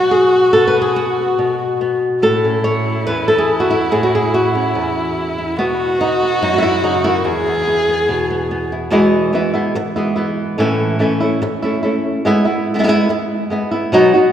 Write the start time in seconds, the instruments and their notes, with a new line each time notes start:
Already playing: nylon-string guitar B2 F#3 B3 F#4, violin F#4
0.11 nylon-string guitar G#4
0.53 nylon-string guitar B2 A4
0.68 nylon-string guitar B4
0.77 nylon-string guitar B3
0.82 nylon-string guitar G#4
0.96 nylon-string guitar F#4
1.38 nylon-string guitar B2
1.81 nylon-string guitar B3
2.22 nylon-string guitar A2 A4, violin E4
2.44 nylon-string guitar C#4
2.64 nylon-string guitar C#5
3.07 nylon-string guitar E2 B4
3.28 nylon-string guitar A4
3.38 nylon-string guitar G#4
3.60 nylon-string guitar F#4
3.71 nylon-string guitar E4
3.91 nylon-string guitar A2 G#4
4.03 nylon-string guitar F#4
4.15 nylon-string guitar G#4
4.34 nylon-string guitar F#4
4.55 nylon-string guitar C#4
4.75 nylon-string guitar E2
5.38 nylon-string guitar E4
5.57 nylon-string guitar B2 B3, violin F#4
6.01 nylon-string guitar D#4
6.22 nylon-string guitar B3
6.41 nylon-string guitar F#2 D#4
6.53 nylon-string guitar E4 F#4
6.58 nylon-string guitar E4
6.62 nylon-string guitar E4
6.83 nylon-string guitar C#3 D#4
7.04 nylon-string guitar D#3 E4
7.25 nylon-string guitar E2, violin G#4
7.47 nylon-string guitar B3
7.67 nylon-string guitar B3
7.88 nylon-string guitar B3
8.08 nylon-string guitar B2
8.30 nylon-string guitar B3
8.51 nylon-string guitar B3
8.72 nylon-string guitar E4
8.90 nylon-string guitar E2 B2 E3 G#3 B3 E4
9.33 nylon-string guitar E3 G#3 B3 E4
9.54 nylon-string guitar E3 G#3 B3 E4
9.75 muted nylon-string guitar stroke
9.96 nylon-string guitar E3 G#3 B3 E4
10.16 nylon-string guitar E3 G#3 B3 E4
10.58 nylon-string guitar A2 E3 A3 C#4 E4
10.99 nylon-string guitar E3 A3 C#4 E4
11.20 nylon-string guitar A3 C#4 E4
11.42 muted nylon-string guitar stroke
11.62 nylon-string guitar A3 C#4 E4
11.83 nylon-string guitar A3 C#4 E4
12.25 nylon-string guitar G#3 B3 E4
12.45 nylon-string guitar B3 E4
12.74 nylon-string guitar G#3 B3 E4
12.79 nylon-string guitar G#3 B3 E4
12.83 nylon-string guitar G#3 B3 E4
12.88 nylon-string guitar G#3 B3 E4
13.09 muted nylon-string guitar stroke
13.50 nylon-string guitar G#3 B3 E4
13.71 nylon-string guitar B3 E4
13.92 nylon-string guitar B2 F#3 B3 D#4 F#4
14.14 nylon-string guitar B3 D#4 F#4